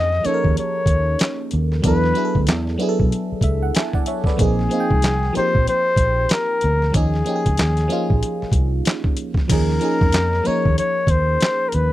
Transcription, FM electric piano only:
0.00 0.23 F3 medium
0.00 0.24 A#3 medium
0.00 0.25 C#4 medium
0.00 0.26 D#4 medium
0.00 1.86 G4 medium
0.00 1.86 G#4 medium
0.23 1.42 F3 medium
0.23 1.43 A#3 medium
0.23 1.43 C#4 medium
0.23 1.44 D#4 medium
0.28 0.34 A4 medium
0.34 1.48 A#4 medium
1.82 2.12 F#3 medium
1.82 2.13 B3 medium
1.82 2.14 D4 medium
1.82 2.14 E4 medium
1.87 2.15 A4 medium
2.14 2.74 F#3 medium
2.14 2.75 B3 medium
2.14 2.75 D4 medium
2.14 2.76 E4 medium
2.18 2.25 G#4 medium
2.25 2.80 A4 medium
2.78 3.97 F#3 medium
2.78 3.98 B3 medium
2.78 3.98 D4 medium
2.78 3.99 E4 medium
2.82 2.89 G#4 medium
2.89 4.03 A4 medium
3.44 3.61 E5 medium
3.63 3.75 F#5 medium
3.76 3.94 E5 soft
3.76 3.94 G#5 medium
3.76 4.36 A5 medium
3.94 4.07 D5 medium
3.94 4.07 F#5 medium
4.07 4.26 C#5 medium
4.07 4.25 E5 medium
4.26 4.57 B4 medium
4.26 4.56 D5 medium
4.37 4.68 F3 medium
4.37 4.68 A#3 medium
4.37 4.69 C4 medium
4.37 4.69 D#4 medium
4.42 4.70 G#4 medium
4.69 5.29 F3 medium
4.69 5.30 A#3 medium
4.69 5.31 C4 medium
4.69 5.31 D#4 medium
4.74 4.80 F4 medium
4.80 5.35 G5 medium
5.33 6.52 F3 medium
5.33 6.53 A#3 medium
5.33 6.54 C4 medium
5.33 6.54 D#4 medium
5.38 6.55 G4 medium
6.92 7.23 F3 medium
6.92 7.24 A#3 medium
6.92 7.24 C#4 medium
6.92 7.25 D#4 medium
6.97 7.25 G#4 medium
7.25 7.85 F3 medium
7.25 7.85 A#3 medium
7.25 7.86 C#4 medium
7.25 7.86 D#4 medium
7.29 7.36 G4 medium
7.36 7.90 G#4 medium
7.88 9.08 F3 medium
7.88 9.08 A#3 medium
7.88 9.09 C#4 medium
7.88 9.09 D#4 medium
7.93 9.10 F4 medium
9.48 9.78 F3 medium
9.48 9.79 A#3 medium
9.48 9.80 C#4 medium
9.48 9.80 D#4 medium
9.53 9.81 G#4 medium
9.80 10.40 F3 medium
9.80 10.41 A#3 medium
9.80 10.41 C#4 medium
9.80 10.42 D#4 medium
9.84 10.42 G#4 medium
10.43 11.63 F3 medium
10.43 11.64 A#3 medium
10.43 11.64 C#4 medium
10.43 11.65 D#4 medium
10.48 11.65 A#4 medium

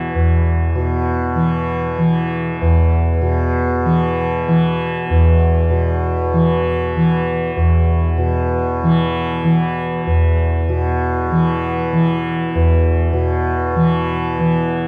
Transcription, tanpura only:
0.00 0.14 E2 soft
0.00 0.75 B2 soft
0.00 1.35 E3 soft
0.15 2.61 E2 soft
0.75 3.21 B2 soft
1.35 1.98 E3 soft
1.98 3.85 E3 soft
2.61 5.10 E2 soft
3.21 5.70 B2 soft
3.85 4.48 E3 soft
4.48 6.33 E3 soft
5.10 7.56 E2 soft
5.70 8.17 B2 soft
6.33 6.96 E3 soft
6.96 8.83 E3 soft
7.56 10.06 E2 soft
8.18 10.68 B2 soft
8.83 9.44 E3 medium
9.44 11.31 E3 soft
10.07 12.55 E2 soft
10.69 13.12 B2 soft
11.31 11.93 E3 soft
11.93 13.76 E3 soft
12.55 14.88 E2 soft
13.13 14.88 B2 medium
13.76 14.39 E3 soft
14.39 14.88 E3 soft

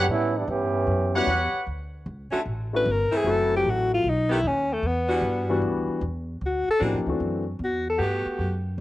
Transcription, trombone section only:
0.09 0.33 G3 medium
0.09 0.34 B3 medium
0.09 0.33 C#4 medium
0.09 0.33 E4 loud
0.36 0.47 E3 medium
0.36 0.49 G3 medium
0.36 0.47 B3 medium
0.36 0.49 D4 loud
0.48 1.54 E3 medium
0.48 1.54 B3 medium
0.48 1.54 C#4 loud
0.48 1.54 G4 medium

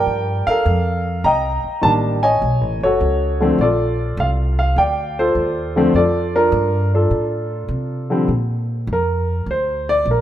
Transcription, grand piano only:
0.00 0.54 F3 medium
0.00 0.54 G3 soft
0.00 0.55 D4 medium
0.00 0.47 A#4 medium
0.00 1.02 D5 medium
0.00 0.48 G5 loud
0.47 1.21 A4 medium
0.47 1.21 A#4 medium
0.47 1.26 F5 loud
1.24 2.22 D#5 medium
1.24 2.38 G5 medium
1.24 1.84 A#5 medium
1.81 2.18 D#3 medium
1.81 2.18 G3 medium
1.81 2.18 A#3 soft
1.81 2.19 D4 medium
1.81 1.92 A5 medium
2.23 2.82 C#5 medium
2.23 3.36 D#5 medium
2.23 2.77 G#5 medium
2.83 3.56 F#4 medium
2.83 3.56 A4 medium
2.83 3.62 C#5 medium
3.40 3.57 D3 medium
3.40 3.57 F3 medium
3.40 3.57 A3 medium
3.40 3.58 C4 medium
3.61 4.74 F4 medium
3.61 4.74 A4 medium
3.61 4.14 D5 medium
4.20 4.29 F5 medium
4.59 4.77 F5 medium
4.78 5.91 D5 medium
4.78 5.18 G5 medium
5.19 5.94 F4 medium
5.19 5.95 A4 medium
5.19 5.91 C5 medium
5.76 5.92 D3 medium
5.76 5.93 F3 medium
5.76 5.93 A3 medium
5.76 5.93 C4 medium
5.96 6.34 F4 medium
5.96 6.93 A4 medium
5.96 6.35 D5 medium
6.36 6.93 D4 medium
6.36 6.93 F4 medium
6.36 6.89 A#4 medium
6.94 8.06 D4 soft
6.94 8.07 F4 soft
6.94 8.07 A4 medium
8.10 8.27 D3 medium
8.10 8.27 F3 medium
8.10 8.27 G3 medium
8.10 8.28 C4 medium
8.93 9.45 A#4 medium
9.51 9.87 C5 medium
9.89 10.06 D5 loud
10.11 10.21 A#4 medium

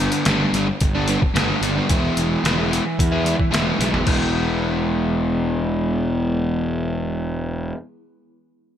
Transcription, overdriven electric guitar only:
0.00 0.26 G2 medium
0.00 0.26 D3 medium
0.00 0.27 G3 medium
0.00 0.28 B3 loud
0.00 0.28 D4 loud
0.27 0.67 G2 medium
0.27 0.54 D3 medium
0.27 0.42 G3 medium
0.27 0.42 B3 medium
0.27 0.40 D4 medium
0.41 0.55 G3 medium
0.41 0.56 B3 medium
0.41 0.56 D4 medium
0.55 0.69 D3 medium
0.55 0.68 G3 medium
0.55 0.69 B3 medium
0.55 0.68 D4 medium
0.69 muted overdriven electric guitar stroke soft
0.95 1.08 G3 medium
0.95 1.10 B3 medium
0.95 1.09 D4 medium
1.09 1.21 D3 medium
1.09 1.22 G3 medium
1.09 1.22 B3 medium
1.09 1.21 D4 medium
1.22 muted overdriven electric guitar stroke soft
1.35 1.88 G2 medium
1.35 1.60 D3 medium
1.35 1.61 G3 medium
1.35 1.63 B3 loud
1.35 1.62 D4 loud
1.61 1.87 D3 medium
1.61 1.76 G3 medium
1.61 1.76 B3 medium
1.61 1.74 D4 medium
1.75 1.89 G3 medium
1.75 1.91 B3 medium
1.75 1.88 D4 medium
1.90 2.43 E3 medium
1.90 2.43 G#3 medium
1.90 2.44 B3 medium
1.90 2.44 E4 medium
2.44 2.69 E3 medium
2.44 2.59 G#3 medium
2.44 2.57 B3 medium
2.44 2.56 E4 medium
2.58 2.70 G#3 medium
2.58 2.70 B3 medium
2.58 2.71 E4 medium
2.71 3.12 E3 medium
2.71 2.85 G#3 medium
2.71 2.85 B3 medium
2.71 2.84 E4 medium
2.85 muted overdriven electric guitar stroke soft
3.12 3.24 G#3 soft
3.12 3.25 B3 medium
3.12 3.25 E4 medium
3.24 3.50 E3 medium
3.24 3.37 G#3 medium
3.24 3.37 B3 medium
3.24 3.36 E4 medium
3.38 muted overdriven electric guitar stroke soft
3.51 3.77 E3 medium
3.51 3.78 G#3 medium
3.51 3.78 B3 medium
3.51 3.79 E4 medium
3.78 4.03 E3 medium
3.78 3.93 G#3 medium
3.78 3.92 B3 medium
3.78 3.91 E4 medium
3.92 4.05 G#3 medium
3.92 4.05 B3 medium
3.92 4.05 E4 medium
4.04 7.73 E3 medium
4.04 7.75 G#3 medium
4.04 7.76 B3 medium
4.08 7.77 E4 medium

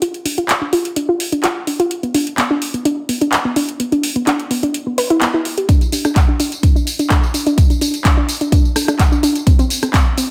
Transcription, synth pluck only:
0.02 0.08 F4 loud
0.25 0.34 D4 medium
0.38 0.43 F4 loud
0.61 0.70 D4 medium
0.73 0.79 F4 loud
0.96 1.05 D4 medium
1.09 1.14 F4 loud
1.32 1.40 D4 medium
1.44 1.50 F4 loud
1.67 1.76 D4 medium
1.80 1.85 F4 loud
2.03 2.11 B3 medium
2.14 2.20 D4 loud
2.38 2.47 B3 medium
2.51 2.56 D4 loud
2.74 2.82 B3 medium
2.85 2.91 D4 loud
3.09 3.18 B3 medium
3.21 3.27 D4 loud
3.45 3.53 B3 medium
3.56 3.62 D4 loud
3.80 3.89 B3 medium
3.92 3.98 D4 loud
4.16 4.24 B3 medium
4.27 4.33 D4 loud
4.51 4.60 B3 medium
4.63 4.68 D4 loud
4.87 4.95 B3 medium
4.98 5.07 B4 loud
5.10 5.18 E4 loud
5.22 5.28 B3 medium
5.34 5.39 E4 medium
5.58 5.63 G4 medium
5.69 5.75 D4 loud
5.92 6.01 D4 medium
6.05 6.10 D4 loud
6.28 6.37 D4 medium
6.40 6.46 D4 loud
6.63 6.72 D4 medium
6.76 6.81 D4 medium
6.99 7.07 D4 medium
7.11 7.17 D4 loud
7.34 7.43 D4 medium
7.47 7.52 D4 loud
7.70 7.78 D4 medium
7.81 7.87 D4 medium
8.05 8.14 D4 medium
8.17 8.23 D4 loud
8.41 8.49 D4 medium
8.52 8.58 D4 loud
8.76 8.85 D4 medium
8.88 8.94 D4 loud
9.12 9.20 D4 medium
9.23 9.29 D4 loud
9.47 9.56 C4 medium
9.59 9.65 C4 loud
9.83 9.91 C4 medium
9.94 10.00 C4 loud
10.18 10.27 C4 medium

